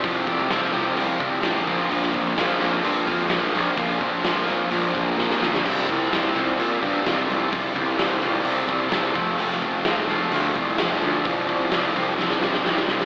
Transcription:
<<
  \new Staff \with { instrumentName = "Distorted electric guitar" } { \time 4/4 \key bes \lydian \tempo 4 = 128 <c f c' f' g'>8 <c' f' g'>8 <f c' f' g'>8 <c f c' f' g'>8 <f c' f' g'>8 <c f c' f' g'>8 <f c' f' g'>8 <bes, f bes c' f'>8 | <bes, f bes c' f'>8 <bes c' f'>8 <f bes c' f'>8 <bes, f bes c' f'>8 <f bes c' f'>8 <bes, f bes c' f'>8 <f bes c' f'>8 <bes c' f'>8 | <bes, f bes c' f'>8 <bes c' f'>8 <f bes c' f'>8 <bes, f bes c' f'>8 <f bes c' f'>8 <bes, f bes c' f'>8 <f bes c' f'>8 <bes c' f'>8 | <c g c' f'>8 <g c' f'>8 <c g c' f'>8 <c g c' f'>8 <c g c' f'>8 <c g c' f'>8 <c g c' f'>8 <g c' f'>8 |
<c g c' f'>8 <g c' f'>8 <c g c' f'>8 <c g c' f'>8 <c g c' f'>8 <c g c' f'>8 <c g c' f'>8 <f a c' f'>8 | <f a c' f'>8 <a c' f'>8 <f a c' f'>8 <f a c' f'>8 <f a c' f'>8 <f a c' f'>8 <f a c' f'>8 <a c' f'>8 | <c f g c' f'>8 <g c' f'>8 <f g c' f'>8 <c f g c' f'>8 <f g c' f'>8 <c f g c' f'>8 <f g c' f'>8 <g c' f'>8 | }
  \new Staff \with { instrumentName = "Picked electric bass" } { \clef bass \time 4/4 \key bes \lydian c,8 c,8 c,8 c,8 c,8 c,8 a,,8 bes,,8 | bes,,8 bes,,8 bes,,8 bes,,8 g,8 f,8 bes,,8 bes,,8 | bes,,8 bes,,8 bes,,8 bes,,8 bes,,8 bes,,8 bes,,8 d,8 | c,8 c,8 c,8 c,8 bes,8 g,8 c,8 c,8 |
c,8 c,8 c,8 c,8 c,8 c,8 c,8 f,,8 | f,,8 f,,8 f,,8 f,,8 d,8 c,8 f,,8 d,8 | c,8 c,8 c,8 c,8 c,8 c,8 c,8 c,8 | }
  \new DrumStaff \with { instrumentName = "Drums" } \drummode { \time 4/4 <hho bd>8 <hho bd>8 <hho sn>8 hho8 hho8 <hho bd>8 <hho sn>8 <hho bd>8 | hho16 sn16 <hho bd>8 <hho sn>8 hho8 hho8 <hho bd>8 <hho sn>8 hho8 | <hho bd>8 <hho bd>8 <hho sn>8 hho8 hho8 <hho bd>8 sn16 sn16 sn16 sn16 | <cymc bd>16 sn16 <hho bd>8 <hho sn>8 hho8 hho8 <hho bd>8 <hho sn>8 hho8 |
<hho bd>8 <hho bd>8 <hho sn>8 hho8 hho8 <hho bd>8 <hho sn>8 <hho bd>8 | hho16 sn16 <hho bd>8 <hho sn>8 hho8 hho8 <hho bd>8 <hho sn>8 hho8 | <hho bd>8 <hho bd>8 <hho sn>8 hho8 sn16 sn16 sn16 sn16 sn16 sn16 sn16 sn16 | }
>>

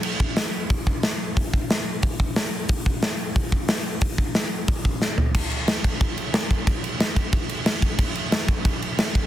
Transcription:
\new DrumStaff \with { instrumentName = "Drums" } \drummode { \time 4/4 \tempo 4 = 181 cymc8 bd8 <hho sn>4 <hho bd>8 bd8 <hho sn>4 | <hho bd>8 bd8 <hho sn>4 <hho bd>8 bd8 <hho sn>4 | <hho bd>8 bd8 <hho sn>4 <hho bd>8 bd8 <hho sn>4 | <hho bd>8 bd8 <hho sn>4 <hho bd>8 bd8 sn8 tomfh8 |
<cymc bd>8 cymc8 <cymc sn>8 <cymc bd>8 <cymc bd>8 cymc8 <cymc sn>8 <cymc bd>8 | <cymc bd>8 cymc8 <cymc sn>8 <cymc bd>8 <cymc bd>8 cymc8 <cymc sn>8 <cymc bd>8 | <cymc bd>8 cymc8 <cymc sn>8 <cymc bd>8 <cymc bd>8 cymc8 <cymc sn>8 <cymc bd>8 | }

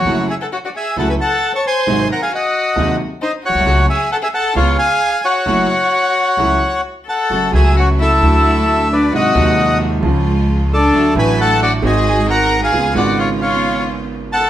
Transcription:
<<
  \new Staff \with { instrumentName = "Bandoneon" } { \time 4/4 \key fis \minor \tempo 4 = 133 <cis'' fis''>8 <e'' gis''>16 <fis'' a''>16 <cis'' fis''>16 <d'' fis''>16 <e'' gis''>8 <fis'' a''>16 <gis'' b''>16 <fis'' a''>8. <a'' cis'''>16 <gis'' bis''>8~ | <gis'' bis''>8 <fis'' ais''>16 <eis'' gis''>16 <dis'' fis''>4. r8 <bis' dis''>8 <cis'' fis''>8~ | <cis'' fis''>8 <e'' gis''>8 <fis'' a''>16 <e'' gis''>16 <fis'' a''>8 <cis'' eis''>8 <eis'' gis''>4 <cis'' fis''>8~ | <cis'' fis''>2. r8 <fis'' a''>8~ |
<fis'' a''>8 <e'' gis''>8 <cis'' fis''>8 <a' e''>2 <b' d''>8 | <dis'' fis''>4. r2 <a' d''>8~ | <a' d''>8 <gis'' b''>8 <fis'' a''>8 <d'' fis''>8 <dis'' gis''>4 <fis'' ais''>8. <eis'' gis''>16~ | <eis'' gis''>8 <d'' fis''>8 <cis'' eis''>8 <cis'' eis''>4 r4 <fis'' a''>8 | }
  \new Staff \with { instrumentName = "Violin" } { \time 4/4 \key fis \minor fis'8 gis'16 a'16 fis'16 fis'16 gis'8 a'16 b'16 a'8. cis''16 bis'8~ | bis'8 ais'16 gis'16 fis'4. r8 dis'8 fis'8~ | fis'8 gis'8 a'16 gis'16 a'8 eis'8 gis'4 fis'8~ | fis'2. r8 a'8~ |
a'8 gis'8 fis'8 e'2 d'8 | fis'4. r2 d'8~ | d'8 b'8 a'8 fis'8 gis'4 ais'8. gis'16~ | gis'8 fis'8 eis'8 eis'4 r4 a'8 | }
  \new Staff \with { instrumentName = "String section" } { \time 4/4 \key fis \minor <a e' fis'>8 r4. <a e' fis'>8 r4. | <gis bis fis'>8 r4. <gis bis fis'>8 r4. | <a cis' fis'>8 r4. <b cis' eis'>8 r4. | <a e' fis'>8 r4. <a e' fis'>8 r4. |
<a cis' fis'>8 <a cis' fis'>4. <a d' fis'>2 | <gis bis fis'>8 <gis bis fis'>4. <gis cis' eis'>2 | <a d' fis'>8 <a d' fis'>4. <gis bis fis'>2 | <b cis' eis'>8 <b cis' eis'>2.~ <b cis' eis'>8 | }
  \new Staff \with { instrumentName = "Grand piano" } { \clef bass \time 4/4 \key fis \minor <fis, cis fis a e'>8 r4. <cis, cis fis a e'>8 r4. | <gis,, gis, bis, fis gis dis'>8 r4. <dis,, dis, bis, fis gis dis'>8 r4 r32 ais,,32 b,,32 bis,,32 | <cis, cis fis a fis'>8 r4. <cis, cis gis b eis'>8 r4. | <fis, cis fis a e'>8 r4. <cis, cis fis a e'>8 r4. |
<fis, cis fis a fis'>8 <cis, cis fis a fis'>4. <d, d fis a fis'>2 | <gis,, gis, bis, fis gis dis'>8 <dis,, dis, bis, fis gis dis'>4. <cis, cis eis gis eis'>2 | <d, d fis a fis'>8 <a,, a, d fis a fis'>4. <gis,, gis, dis gis bis fis'>2 | <cis, cis gis b eis'>8 <gis,, gis, cis gis b eis'>2.~ <gis,, gis, cis gis b eis'>8 | }
  \new Staff \with { instrumentName = "Upright bass" } { \clef bass \time 4/4 \key fis \minor fis,,16. r4. r32 cis,16. r4. r32 | gis,,16. r4. r32 dis,16. r4 r16 ais,,32 b,,32 bis,,32 | cis,16. r4. r32 cis,16. r4. r32 | fis,,16. r4. r32 cis,16. r4. r32 |
fis,,16. r32 cis,4~ cis,16. r32 d,4.~ d,16. r32 | gis,,16. r32 dis,4~ dis,16. r32 cis,4.~ cis,16. r32 | d,16. r32 a,,4~ a,,16. r32 gis,,4.~ gis,,16. r32 | cis,16. r32 gis,,2.~ gis,,16. r32 | }
>>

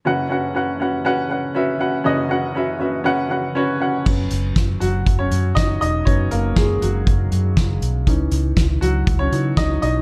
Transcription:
<<
  \new Staff \with { instrumentName = "Upright piano" } { \time 4/4 \key cis \dorian \tempo 4 = 120 <cis' fis' b' fis''>8 <cis' fis' b' fis''>8 <cis' fis' b' fis''>8 <cis' fis' b' fis''>8 <cis' fis' b' fis''>8 <cis' fis' b' fis''>8 <cis' fis' b' e''>8 <cis' fis' b' fis''>8 | <cis' fis' b' dis''>8 <cis' fis' b' fis''>8 <cis' fis' b' e''>8 <cis' fis' b' e''>8 <cis' fis' b' fis''>8 <cis' fis' b' fis''>8 <cis' fis' b' cis''>8 <cis' fis' b' fis''>8 | r4. <fis fis'>8. <cis' cis''>8. <dis' dis''>8 <dis' dis''>8 | <cis' cis''>8 <ais ais'>8 <gis gis'>8 <fis fis'>2 r8 |
r4. <fis fis'>8. <cis' cis''>8. <dis' dis''>8 <dis' dis''>8 | }
  \new Staff \with { instrumentName = "Upright piano" } { \clef bass \time 4/4 \key cis \dorian <fis,, fis,>1 | <fis,, fis,>1 | <fis b cis'>1 | <fis b>8 r2. r8 |
<e cis' dis'>2~ <e cis' dis'>8 <e cis' dis'>8 r4 | }
  \new Staff \with { instrumentName = "Fingered electric bass" } { \clef bass \time 4/4 \key cis \dorian r1 | r1 | fis,,8 fis,,8 fis,,8 fis,,8 fis,,8 fis,8 fis,,8 e,,8 | fis,,8 fis,,8 fis,,8 fis,,8 fis,,8 fis,8 fis,,8 b,,8 |
cis,8 cis,8 cis,8 cis,8 cis,8 cis8 cis,8 b,,8 | }
  \new DrumStaff \with { instrumentName = "Drums" } \drummode { \time 4/4 r4 r4 r4 r4 | r4 r4 r4 r4 | <cymc bd>8 hh8 <hh bd sn>8 hh8 <hh bd>8 hh8 <hh bd sn>8 hh8 | <hh bd>8 hh8 <hh bd sn>8 hh8 <hh bd>8 hh8 <hh bd sn>8 hh8 |
<hh bd>8 hh8 <hh bd sn>8 hh8 <hh bd>8 hh8 <hh bd sn>8 hh8 | }
>>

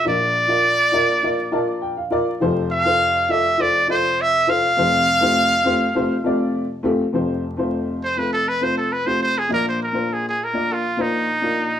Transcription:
<<
  \new Staff \with { instrumentName = "Trumpet" } { \time 4/4 \key f \major \tempo 4 = 102 d''2. r4 | r8 f''4 e''8 d''8 c''8 e''8 f''8~ | f''2. r4 | r4. c''16 b'16 a'16 b'16 c''16 a'16 b'16 c''16 c''16 aes'16 |
bes'16 c''16 bes'8 aes'16 aes'16 bes'8 f'8 ees'4. | }
  \new Staff \with { instrumentName = "Upright piano" } { \time 4/4 \key f \major << { r2 r8 a''8 g''16 f''8. | r1 | r1 | r1 |
r1 | } \\ { <f' bes' d''>8 r16 <f' bes' d''>8 r16 <f' bes' d''>16 r16 <f' bes' d''>16 r16 <f' bes' d''>8. r16 <f' bes' d''>16 r16 | <f' a' c''>8 r16 <f' a' c''>8 r16 <f' a' d''>16 r16 <f' a' c''>16 r16 <f' a' d''>8. r16 <f' a' c''>16 r16 | <a c' f' g' c''>8 r16 <a c' f' g' c''>8 r16 <a c' f' g' c''>16 r16 <a c' f' g' c''>16 r16 <a c' f' g' d''>8. r16 <a c' f' g' a'>16 r16 | <a c' f' c''>8 r16 <a c' f' c''>8. r16 <a c' f' a'>8 r16 <a c' f' c''>8 r16 <a c' f' g'>8 r16 |
<bes d' f' d''>8 r16 <bes d' f' c''>8. r16 <bes d' f' d''>8 r16 <bes d' f' c''>8 r16 <bes d' f' bes'>8 r16 | } >> }
  \new Staff \with { instrumentName = "Upright piano" } { \clef bass \time 4/4 \key f \major <bes,, bes,>1 | <f,, f,>1 | <f,, f,>1 | <f,, f,>1 |
<bes,, bes,>1 | }
>>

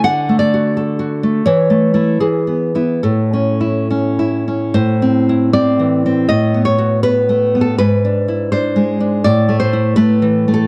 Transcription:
\new Staff \with { instrumentName = "Nylon-string guitar" } { \time 2/4 \key a \major \tempo 4 = 80 << { fis''8 d''4 r8 | cis''4 gis'4 | a'4. r8 | \key a \minor c''4 d''4 |
dis''8 cis''8 b'8. a'16 | b'4 c''4 | d''8 c''8 b'8. a'16 | } \\ { \tuplet 3/2 { d8 a8 fis'8 a'8 fis'8 a8 } | \tuplet 3/2 { e8 a8 <a e'>8 e8 b8 <b e'>8 } | \tuplet 3/2 { a,8 cis'8 e'8 cis'8 e'8 cis'8 } | \tuplet 3/2 { a,8 c'8 e'8 c'8 e8 c'8 } |
\tuplet 3/2 { a,8 b8 fis'8 b8 a8 b8 } | \tuplet 3/2 { gis,8 d'8 e'8 d'8 gis8 d'8 } | \tuplet 3/2 { a,8 a8 e'8 a8 e8 a8 } | } >> }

